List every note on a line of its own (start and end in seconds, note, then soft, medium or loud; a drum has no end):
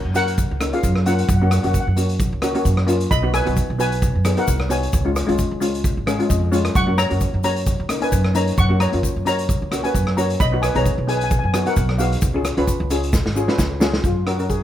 0.00 0.12 A#4 medium
0.00 0.15 F#5 loud
0.05 0.44 F#2 medium
0.14 0.42 A#3 medium
0.14 0.43 C#4 medium
0.14 0.43 F#4 medium
0.14 0.70 A#4 medium
0.14 0.75 F#5 loud
0.14 closed hi-hat medium
0.14 shaker medium
0.27 closed hi-hat medium
0.38 kick loud
0.38 closed hi-hat medium
0.38 shaker medium
0.51 0.70 C#2 medium
0.60 0.68 A#3 medium
0.60 0.68 C#4 medium
0.60 0.68 D#4 medium
0.60 cross-stick medium
0.60 closed hi-hat loud
0.60 shaker medium
0.73 0.93 A#3 medium
0.73 0.94 C#4 medium
0.73 0.94 F4 medium
0.73 1.05 G#4 medium
0.73 1.04 F5 medium
0.73 closed hi-hat medium
0.83 1.22 F#2 loud
0.83 kick medium
0.83 closed hi-hat medium
0.83 shaker medium
0.96 cross-stick medium
1.06 1.27 A#3 medium
1.06 1.27 C#4 medium
1.06 1.28 F4 medium
1.06 1.14 A#4 medium
1.06 1.13 F#5 medium
1.06 closed hi-hat medium
1.06 shaker medium
1.14 1.19 F#5 medium
1.18 1.27 F#5 medium
1.18 closed hi-hat medium
1.28 1.59 F#2 loud
1.28 1.35 F#5 soft
1.28 kick loud
1.28 closed hi-hat medium
1.28 shaker medium
1.36 1.42 F#5 medium
1.41 1.54 A#3 medium
1.41 1.54 C#4 medium
1.41 1.55 F#4 medium
1.41 1.49 F#5 medium
1.50 1.57 F#5 medium
1.50 cross-stick medium
1.50 closed hi-hat medium
1.50 shaker medium
1.58 1.65 F#5 soft
1.63 1.73 F#2 medium
1.63 1.84 A#3 medium
1.63 1.84 C#4 medium
1.63 1.85 F#4 medium
1.63 1.71 F#5 medium
1.63 closed hi-hat medium
1.72 1.79 F#5 medium
1.72 kick medium
1.72 closed hi-hat medium
1.72 shaker medium
1.80 1.88 F#5 medium
1.87 2.26 F#2 medium
1.97 2.25 A#3 medium
1.97 2.25 C#4 medium
1.97 2.25 F#4 medium
1.97 closed hi-hat medium
1.97 shaker medium
2.09 closed hi-hat medium
2.19 kick loud
2.19 closed hi-hat medium
2.19 shaker medium
2.33 2.52 C#2 medium
2.42 2.50 A#3 medium
2.42 2.50 C#4 medium
2.42 2.51 F#4 loud
2.42 cross-stick medium
2.42 closed hi-hat medium
2.42 shaker medium
2.54 2.75 A#3 medium
2.54 2.75 C#4 medium
2.54 2.76 F#4 loud
2.54 closed hi-hat medium
2.65 3.04 F#2 loud
2.65 kick medium
2.65 closed hi-hat medium
2.65 shaker medium
2.77 cross-stick medium
2.87 3.08 A#3 loud
2.87 3.09 C#4 medium
2.87 3.09 F4 loud
2.87 closed hi-hat medium
2.87 shaker medium
3.00 closed hi-hat medium
3.11 3.41 B1 loud
3.11 3.32 D#5 medium
3.11 3.34 B5 loud
3.11 kick loud
3.11 closed hi-hat medium
3.11 shaker medium
3.22 3.36 B3 medium
3.22 3.36 D#4 medium
3.22 3.37 F#4 medium
3.34 3.77 B4 medium
3.34 3.79 G#5 loud
3.34 cross-stick medium
3.34 closed hi-hat medium
3.34 shaker medium
3.45 3.56 B1 loud
3.45 3.66 B3 medium
3.45 3.66 D#4 medium
3.45 3.67 F#4 medium
3.45 closed hi-hat medium
3.57 kick medium
3.57 closed hi-hat medium
3.57 shaker medium
3.70 4.09 B1 medium
3.78 4.07 B3 medium
3.78 4.07 D#4 medium
3.78 4.07 F#4 medium
3.78 4.34 B4 medium
3.78 4.40 G#5 loud
3.78 closed hi-hat medium
3.78 shaker medium
3.92 closed hi-hat medium
4.02 kick loud
4.02 closed hi-hat medium
4.02 shaker medium
4.15 4.35 F#2 medium
4.25 4.32 B3 medium
4.25 4.33 D#4 medium
4.25 4.33 G#4 medium
4.25 cross-stick loud
4.25 closed hi-hat loud
4.25 shaker medium
4.37 4.57 B3 medium
4.37 4.58 D#4 medium
4.37 4.58 F#4 medium
4.37 4.69 A#4 medium
4.37 4.69 F#5 medium
4.37 closed hi-hat medium
4.48 4.87 C2 loud
4.48 kick medium
4.48 closed hi-hat medium
4.48 shaker loud
4.60 cross-stick medium
4.69 4.91 B3 medium
4.69 4.91 D#4 medium
4.69 4.91 F#4 medium
4.69 5.58 C#5 medium
4.69 5.58 G#5 medium
4.69 closed hi-hat medium
4.69 shaker medium
4.83 closed hi-hat medium
4.93 5.23 C#2 loud
4.93 kick loud
4.93 closed hi-hat medium
4.93 shaker medium
5.05 5.18 G#3 medium
5.05 5.19 C#4 medium
5.05 5.19 F4 medium
5.16 cross-stick medium
5.16 closed hi-hat medium
5.16 shaker medium
5.27 5.38 C#2 medium
5.27 5.48 G#3 loud
5.27 5.48 C#4 medium
5.27 5.49 F4 loud
5.27 closed hi-hat medium
5.39 kick medium
5.39 closed hi-hat medium
5.39 shaker medium
5.51 5.90 C#2 medium
5.60 5.89 G#3 medium
5.60 5.89 C#4 medium
5.60 5.89 F4 medium
5.60 closed hi-hat medium
5.60 shaker medium
5.74 closed hi-hat medium
5.84 kick loud
5.84 closed hi-hat medium
5.84 shaker medium
5.97 6.17 G#1 medium
6.07 6.14 G#3 medium
6.07 6.15 C#4 medium
6.07 6.15 G#4 medium
6.07 6.28 F5 medium
6.07 cross-stick medium
6.07 closed hi-hat medium
6.07 shaker medium
6.19 6.40 G#3 medium
6.19 6.40 C#4 medium
6.19 6.40 F4 medium
6.19 closed hi-hat medium
6.29 6.69 F2 loud
6.29 6.51 D#5 medium
6.29 kick medium
6.29 closed hi-hat medium
6.29 shaker loud
6.52 6.73 G#3 medium
6.52 6.73 C#4 medium
6.52 6.73 F4 loud
6.52 6.74 C#5 medium
6.52 closed hi-hat medium
6.52 shaker medium
6.65 cross-stick medium
6.65 closed hi-hat medium
6.75 7.06 F#2 loud
6.75 6.97 F#5 medium
6.75 6.97 C#6 loud
6.75 kick loud
6.75 closed hi-hat medium
6.75 shaker medium
6.87 7.00 A#3 medium
6.87 7.01 C#4 medium
6.87 7.01 F#4 medium
6.98 7.41 C#5 medium
6.98 7.41 A#5 loud
6.98 cross-stick medium
6.98 closed hi-hat medium
6.98 shaker medium
7.09 7.20 F#2 medium
7.09 7.30 A#3 medium
7.09 7.31 C#4 medium
7.09 7.31 F#4 medium
7.09 closed hi-hat medium
7.21 kick medium
7.21 closed hi-hat medium
7.21 shaker medium
7.34 7.73 F#2 medium
7.43 7.72 A#3 medium
7.43 7.72 C#4 medium
7.43 7.72 F#4 medium
7.43 7.98 C#5 medium
7.43 8.04 A#5 loud
7.43 closed hi-hat medium
7.43 shaker medium
7.56 closed hi-hat medium
7.67 kick loud
7.67 closed hi-hat medium
7.67 shaker medium
7.80 7.99 C#2 medium
7.89 7.97 A#3 medium
7.89 7.97 C#4 medium
7.89 7.97 D#4 medium
7.89 cross-stick medium
7.89 closed hi-hat medium
7.89 shaker medium
8.01 8.22 A#3 medium
8.01 8.22 C#4 medium
8.01 8.22 D#4 medium
8.01 8.34 B4 medium
8.01 8.36 G#5 medium
8.01 closed hi-hat medium
8.12 8.51 F#2 loud
8.12 kick medium
8.12 closed hi-hat medium
8.12 shaker loud
8.24 cross-stick medium
8.34 8.55 A#3 medium
8.34 8.56 C#4 medium
8.34 8.56 D#4 medium
8.34 8.57 C#5 medium
8.34 8.59 A#5 loud
8.34 closed hi-hat medium
8.34 shaker medium
8.47 closed hi-hat medium
8.57 8.88 F#2 loud
8.57 8.70 F#5 medium
8.57 8.68 C#6 loud
8.57 kick loud
8.57 closed hi-hat medium
8.57 shaker loud
8.69 8.83 A#3 medium
8.69 8.83 C#4 medium
8.69 8.83 F#4 medium
8.80 9.24 C#5 medium
8.80 9.26 A#5 loud
8.80 cross-stick medium
8.80 closed hi-hat medium
8.80 shaker medium
8.92 9.02 F#2 medium
8.92 9.13 A#3 medium
8.92 9.13 C#4 medium
8.92 9.14 F4 medium
8.92 closed hi-hat medium
9.03 kick medium
9.03 closed hi-hat medium
9.03 shaker medium
9.16 9.55 F#2 medium
9.25 9.54 A#3 medium
9.25 9.54 C#4 medium
9.25 9.54 F#4 medium
9.25 9.81 C#5 medium
9.25 9.86 A#5 loud
9.25 closed hi-hat medium
9.25 shaker medium
9.38 closed hi-hat medium
9.49 kick loud
9.49 closed hi-hat medium
9.49 shaker medium
9.62 9.81 C#2 medium
9.71 9.79 A#3 medium
9.71 9.79 C#4 medium
9.71 9.80 F#4 medium
9.71 cross-stick medium
9.71 closed hi-hat medium
9.71 shaker medium
9.83 10.04 A#3 medium
9.83 10.04 C#4 medium
9.83 10.05 F#4 medium
9.83 10.16 B4 medium
9.83 10.18 G#5 medium
9.83 closed hi-hat medium
9.95 10.33 F#2 loud
9.95 kick medium
9.95 closed hi-hat medium
9.95 shaker medium
10.07 cross-stick medium
10.17 10.38 A#3 medium
10.17 10.38 C#4 medium
10.17 10.38 F#4 medium
10.17 10.39 C#5 medium
10.17 10.41 A#5 medium
10.17 closed hi-hat medium
10.17 shaker medium
10.30 closed hi-hat medium
10.40 10.70 B1 loud
10.40 10.62 D#5 medium
10.40 10.63 B5 loud
10.40 kick loud
10.40 closed hi-hat medium
10.40 shaker medium
10.52 10.65 B3 medium
10.52 10.66 D#4 medium
10.52 10.66 F#4 medium
10.62 10.75 B4 medium
10.62 10.74 G#5 medium
10.62 cross-stick medium
10.62 closed hi-hat medium
10.62 shaker medium
10.75 10.84 B1 medium
10.75 10.95 B3 medium
10.75 10.95 D#4 medium
10.75 10.96 G#4 medium
10.75 11.07 C#5 medium
10.75 11.06 A#5 loud
10.75 closed hi-hat medium
10.86 kick medium
10.86 closed hi-hat medium
10.86 shaker medium
10.98 11.37 B1 medium
11.07 11.35 B3 medium
11.07 11.36 D#4 medium
11.07 11.36 G#4 medium
11.07 11.17 B4 medium
11.07 11.16 G#5 medium
11.07 closed hi-hat medium
11.17 11.23 G#5 medium
11.17 closed hi-hat medium
11.24 11.30 G#5 medium
11.31 11.38 G#5 medium
11.31 kick loud
11.31 closed hi-hat medium
11.31 shaker medium
11.39 11.44 G#5 medium
11.44 11.63 F#2 medium
11.44 11.52 G#5 medium
11.53 11.61 B3 medium
11.53 11.61 D#4 medium
11.53 11.62 F#4 medium
11.53 11.61 G#5 medium
11.53 cross-stick medium
11.53 closed hi-hat medium
11.53 shaker medium
11.66 11.86 B3 medium
11.66 11.86 D#4 medium
11.66 11.87 F#4 medium
11.66 11.98 A#4 medium
11.66 12.01 F#5 medium
11.66 closed hi-hat medium
11.76 12.15 B1 loud
11.76 kick medium
11.76 closed hi-hat medium
11.76 shaker medium
11.89 cross-stick medium
11.98 12.20 B3 medium
11.98 12.20 D#4 medium
11.98 12.20 F#4 medium
11.98 13.55 G#4 medium
11.98 13.54 F5 medium
11.98 closed hi-hat medium
11.98 shaker medium
12.12 closed hi-hat medium
12.22 12.52 C#2 loud
12.22 kick loud
12.22 closed hi-hat medium
12.22 shaker loud
12.34 12.47 C#4 medium
12.34 12.48 F4 medium
12.34 12.48 G#4 medium
12.45 cross-stick medium
12.45 closed hi-hat medium
12.45 shaker medium
12.57 12.66 C#2 medium
12.57 12.78 C#4 loud
12.57 12.78 F4 medium
12.57 12.78 B4 loud
12.57 closed hi-hat medium
12.67 kick medium
12.67 closed hi-hat medium
12.67 shaker loud
12.80 13.19 C#2 medium
12.90 13.18 C#4 medium
12.90 13.18 F4 medium
12.90 13.19 G#4 medium
12.90 closed hi-hat medium
12.90 shaker medium
13.03 closed hi-hat medium
13.13 kick loud
13.13 snare medium
13.13 shaker medium
13.26 13.45 G#1 medium
13.26 snare medium
13.36 13.43 C#4 medium
13.36 13.43 F4 medium
13.36 13.44 G#4 medium
13.36 shaker medium
13.48 13.68 C#4 medium
13.48 13.69 F4 medium
13.48 13.69 B4 medium
13.48 snare medium
13.58 13.98 C#2 loud
13.58 kick medium
13.58 snare medium
13.58 shaker medium
13.81 14.02 C#4 medium
13.81 14.02 F4 medium
13.81 14.02 G#4 loud
13.81 snare loud
13.81 shaker medium
13.93 snare medium
14.04 14.62 F#2 medium
14.04 14.28 F4 medium
14.04 kick loud
14.04 closed hi-hat medium
14.04 shaker medium
14.26 14.34 C#4 medium
14.26 14.34 F#4 medium
14.26 14.49 F#4 medium
14.26 14.35 A#4 medium
14.26 cross-stick medium
14.26 closed hi-hat medium
14.39 14.52 C#4 medium
14.39 14.52 F#4 medium
14.39 14.53 A#4 medium
14.39 closed hi-hat medium
14.39 shaker soft
14.50 14.63 G#4 medium
14.50 kick medium
14.50 closed hi-hat medium
14.50 shaker medium